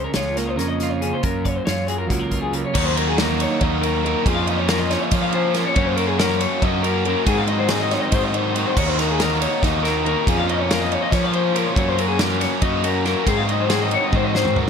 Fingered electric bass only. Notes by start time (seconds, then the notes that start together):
0.16 C#2
0.60 F2
1.24 F#2
1.68 F#2
2.10 C#2
2.76 D#2
3.62 D#2
4.26 F2
5.12 F3
5.77 F#2
6.63 F#2
7.27 G#2
8.12 G#2
8.77 D#2
9.62 D#2
10.27 F2
11.12 F3
11.77 F#2
12.62 F#2
13.27 G#2
14.13 G#2